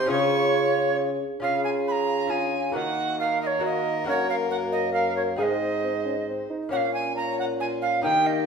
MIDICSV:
0, 0, Header, 1, 6, 480
1, 0, Start_track
1, 0, Key_signature, -5, "major"
1, 0, Tempo, 441501
1, 107, Time_signature, 3, 2, 24, 8
1, 9198, End_track
2, 0, Start_track
2, 0, Title_t, "Recorder"
2, 0, Program_c, 0, 74
2, 114, Note_on_c, 0, 73, 92
2, 1060, Note_off_c, 0, 73, 0
2, 1557, Note_on_c, 0, 77, 85
2, 1777, Note_off_c, 0, 77, 0
2, 1784, Note_on_c, 0, 80, 71
2, 1849, Note_off_c, 0, 80, 0
2, 2041, Note_on_c, 0, 83, 71
2, 2084, Note_on_c, 0, 82, 78
2, 2095, Note_off_c, 0, 83, 0
2, 2502, Note_on_c, 0, 80, 67
2, 2518, Note_off_c, 0, 82, 0
2, 2988, Note_off_c, 0, 80, 0
2, 2992, Note_on_c, 0, 78, 88
2, 3464, Note_off_c, 0, 78, 0
2, 3476, Note_on_c, 0, 77, 77
2, 3709, Note_off_c, 0, 77, 0
2, 3720, Note_on_c, 0, 75, 72
2, 3771, Note_on_c, 0, 73, 78
2, 3781, Note_off_c, 0, 75, 0
2, 3949, Note_off_c, 0, 73, 0
2, 3972, Note_on_c, 0, 75, 84
2, 4427, Note_off_c, 0, 75, 0
2, 4446, Note_on_c, 0, 73, 87
2, 4666, Note_off_c, 0, 73, 0
2, 4673, Note_on_c, 0, 77, 79
2, 4738, Note_off_c, 0, 77, 0
2, 4901, Note_on_c, 0, 78, 81
2, 4966, Note_off_c, 0, 78, 0
2, 5135, Note_on_c, 0, 75, 79
2, 5360, Note_off_c, 0, 75, 0
2, 5366, Note_on_c, 0, 77, 70
2, 5608, Note_off_c, 0, 77, 0
2, 5616, Note_on_c, 0, 73, 66
2, 5681, Note_off_c, 0, 73, 0
2, 5859, Note_on_c, 0, 77, 68
2, 5904, Note_on_c, 0, 75, 74
2, 5915, Note_off_c, 0, 77, 0
2, 6807, Note_off_c, 0, 75, 0
2, 7306, Note_on_c, 0, 78, 72
2, 7356, Note_on_c, 0, 77, 78
2, 7367, Note_off_c, 0, 78, 0
2, 7532, Note_off_c, 0, 77, 0
2, 7545, Note_on_c, 0, 80, 78
2, 7781, Note_off_c, 0, 80, 0
2, 7788, Note_on_c, 0, 82, 76
2, 8024, Note_off_c, 0, 82, 0
2, 8038, Note_on_c, 0, 78, 77
2, 8103, Note_off_c, 0, 78, 0
2, 8267, Note_on_c, 0, 80, 78
2, 8332, Note_off_c, 0, 80, 0
2, 8502, Note_on_c, 0, 77, 65
2, 8729, Note_off_c, 0, 77, 0
2, 8735, Note_on_c, 0, 79, 90
2, 8986, Note_on_c, 0, 75, 76
2, 9002, Note_off_c, 0, 79, 0
2, 9198, Note_off_c, 0, 75, 0
2, 9198, End_track
3, 0, Start_track
3, 0, Title_t, "Violin"
3, 0, Program_c, 1, 40
3, 115, Note_on_c, 1, 85, 97
3, 1060, Note_off_c, 1, 85, 0
3, 1564, Note_on_c, 1, 68, 63
3, 2954, Note_off_c, 1, 68, 0
3, 3009, Note_on_c, 1, 66, 61
3, 3472, Note_off_c, 1, 66, 0
3, 3494, Note_on_c, 1, 70, 88
3, 5352, Note_off_c, 1, 70, 0
3, 5377, Note_on_c, 1, 70, 61
3, 5850, Note_off_c, 1, 70, 0
3, 5865, Note_on_c, 1, 72, 65
3, 7047, Note_off_c, 1, 72, 0
3, 7781, Note_on_c, 1, 73, 68
3, 8230, Note_off_c, 1, 73, 0
3, 8262, Note_on_c, 1, 65, 54
3, 8734, Note_off_c, 1, 65, 0
3, 8749, Note_on_c, 1, 67, 75
3, 9198, Note_off_c, 1, 67, 0
3, 9198, End_track
4, 0, Start_track
4, 0, Title_t, "Lute"
4, 0, Program_c, 2, 24
4, 66, Note_on_c, 2, 61, 63
4, 80, Note_on_c, 2, 65, 61
4, 90, Note_on_c, 2, 68, 61
4, 108, Note_on_c, 2, 49, 68
4, 1275, Note_off_c, 2, 49, 0
4, 1495, Note_off_c, 2, 61, 0
4, 1502, Note_off_c, 2, 65, 0
4, 1507, Note_off_c, 2, 68, 0
4, 1520, Note_on_c, 2, 61, 44
4, 1539, Note_on_c, 2, 65, 44
4, 1549, Note_on_c, 2, 68, 43
4, 1564, Note_on_c, 2, 49, 49
4, 2460, Note_off_c, 2, 61, 0
4, 2473, Note_on_c, 2, 61, 42
4, 2477, Note_off_c, 2, 65, 0
4, 2483, Note_off_c, 2, 68, 0
4, 2495, Note_on_c, 2, 65, 39
4, 2501, Note_on_c, 2, 68, 43
4, 2954, Note_off_c, 2, 49, 0
4, 2954, Note_off_c, 2, 61, 0
4, 2958, Note_on_c, 2, 58, 47
4, 2968, Note_off_c, 2, 65, 0
4, 2972, Note_on_c, 2, 66, 51
4, 2973, Note_off_c, 2, 68, 0
4, 2988, Note_on_c, 2, 70, 46
4, 2997, Note_on_c, 2, 51, 51
4, 3895, Note_off_c, 2, 58, 0
4, 3908, Note_off_c, 2, 66, 0
4, 3908, Note_on_c, 2, 58, 47
4, 3919, Note_off_c, 2, 70, 0
4, 3921, Note_on_c, 2, 66, 51
4, 3935, Note_on_c, 2, 70, 46
4, 4383, Note_off_c, 2, 51, 0
4, 4384, Note_off_c, 2, 58, 0
4, 4396, Note_off_c, 2, 66, 0
4, 4397, Note_on_c, 2, 58, 51
4, 4404, Note_off_c, 2, 70, 0
4, 4411, Note_on_c, 2, 66, 52
4, 4423, Note_on_c, 2, 70, 52
4, 4435, Note_on_c, 2, 42, 59
4, 5802, Note_off_c, 2, 58, 0
4, 5810, Note_off_c, 2, 66, 0
4, 5816, Note_off_c, 2, 70, 0
4, 5821, Note_off_c, 2, 42, 0
4, 5830, Note_on_c, 2, 60, 43
4, 5845, Note_on_c, 2, 63, 42
4, 5853, Note_on_c, 2, 68, 44
4, 5873, Note_on_c, 2, 44, 51
4, 7032, Note_off_c, 2, 44, 0
4, 7251, Note_off_c, 2, 60, 0
4, 7259, Note_off_c, 2, 63, 0
4, 7263, Note_off_c, 2, 68, 0
4, 7273, Note_on_c, 2, 58, 44
4, 7290, Note_on_c, 2, 61, 46
4, 7301, Note_on_c, 2, 73, 43
4, 7314, Note_on_c, 2, 46, 52
4, 8685, Note_off_c, 2, 58, 0
4, 8694, Note_off_c, 2, 61, 0
4, 8699, Note_off_c, 2, 73, 0
4, 8706, Note_off_c, 2, 46, 0
4, 8714, Note_on_c, 2, 58, 45
4, 8727, Note_on_c, 2, 63, 48
4, 8743, Note_on_c, 2, 70, 45
4, 8760, Note_on_c, 2, 51, 50
4, 9198, Note_off_c, 2, 51, 0
4, 9198, Note_off_c, 2, 58, 0
4, 9198, Note_off_c, 2, 63, 0
4, 9198, Note_off_c, 2, 70, 0
4, 9198, End_track
5, 0, Start_track
5, 0, Title_t, "Bassoon"
5, 0, Program_c, 3, 70
5, 0, Note_on_c, 3, 60, 76
5, 101, Note_on_c, 3, 65, 76
5, 117, Note_off_c, 3, 60, 0
5, 1315, Note_off_c, 3, 65, 0
5, 1549, Note_on_c, 3, 65, 48
5, 2468, Note_off_c, 3, 65, 0
5, 2519, Note_on_c, 3, 65, 55
5, 3000, Note_on_c, 3, 58, 58
5, 3017, Note_off_c, 3, 65, 0
5, 3944, Note_off_c, 3, 58, 0
5, 3951, Note_on_c, 3, 58, 63
5, 4402, Note_off_c, 3, 58, 0
5, 4409, Note_on_c, 3, 58, 64
5, 4883, Note_off_c, 3, 58, 0
5, 4895, Note_on_c, 3, 58, 61
5, 5856, Note_on_c, 3, 60, 52
5, 5873, Note_off_c, 3, 58, 0
5, 6294, Note_off_c, 3, 60, 0
5, 6344, Note_on_c, 3, 60, 61
5, 6453, Note_off_c, 3, 60, 0
5, 6577, Note_on_c, 3, 61, 56
5, 6687, Note_off_c, 3, 61, 0
5, 6818, Note_on_c, 3, 60, 59
5, 7057, Note_off_c, 3, 60, 0
5, 7063, Note_on_c, 3, 63, 52
5, 7300, Note_off_c, 3, 63, 0
5, 7306, Note_on_c, 3, 61, 53
5, 7755, Note_off_c, 3, 61, 0
5, 7776, Note_on_c, 3, 61, 53
5, 8737, Note_on_c, 3, 58, 55
5, 8753, Note_off_c, 3, 61, 0
5, 9198, Note_off_c, 3, 58, 0
5, 9198, End_track
6, 0, Start_track
6, 0, Title_t, "Bassoon"
6, 0, Program_c, 4, 70
6, 102, Note_on_c, 4, 49, 71
6, 1291, Note_off_c, 4, 49, 0
6, 1559, Note_on_c, 4, 49, 59
6, 2952, Note_off_c, 4, 49, 0
6, 2991, Note_on_c, 4, 51, 59
6, 4395, Note_off_c, 4, 51, 0
6, 4426, Note_on_c, 4, 42, 65
6, 5861, Note_on_c, 4, 44, 55
6, 5878, Note_off_c, 4, 42, 0
6, 7069, Note_off_c, 4, 44, 0
6, 7318, Note_on_c, 4, 46, 55
6, 8748, Note_on_c, 4, 51, 55
6, 8764, Note_off_c, 4, 46, 0
6, 9198, Note_off_c, 4, 51, 0
6, 9198, End_track
0, 0, End_of_file